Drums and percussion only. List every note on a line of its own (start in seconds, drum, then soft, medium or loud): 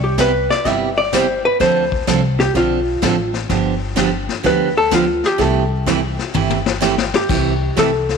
0.18 kick soft
0.18 snare medium
0.18 hi-hat pedal medium
0.51 snare soft
0.65 brush sweep medium
0.65 kick soft
0.65 snare soft
1.13 kick soft
1.13 snare medium
1.13 hi-hat pedal medium
1.60 brush sweep soft
1.60 kick soft
1.60 snare soft
1.92 kick medium
2.07 kick soft
2.07 snare medium
2.07 hi-hat pedal medium
2.40 snare soft
2.55 brush sweep medium
2.55 kick soft
2.55 snare soft
3.02 kick soft
3.02 snare medium
3.02 hi-hat pedal medium
3.34 snare soft
3.49 brush sweep medium
3.49 kick soft
3.49 snare soft
3.97 kick soft
3.97 snare medium
3.97 hi-hat pedal medium
4.29 snare soft
4.44 brush sweep medium
4.44 kick soft
4.44 snare soft
4.92 kick soft
4.92 snare medium
4.92 hi-hat pedal medium
5.24 snare soft
5.39 brush sweep medium
5.39 kick soft
5.39 snare soft
5.87 kick soft
5.87 snare medium
5.87 hi-hat pedal medium
6.19 snare soft
6.34 high tom medium
6.50 high tom medium
6.66 snare medium
6.82 snare medium
6.82 hi-hat pedal medium
6.98 snare medium
7.14 snare medium
7.29 brush sweep soft
7.29 kick medium
7.29 snare soft
7.29 crash medium
7.77 kick soft
7.77 snare medium
7.77 hi-hat pedal medium
8.09 snare soft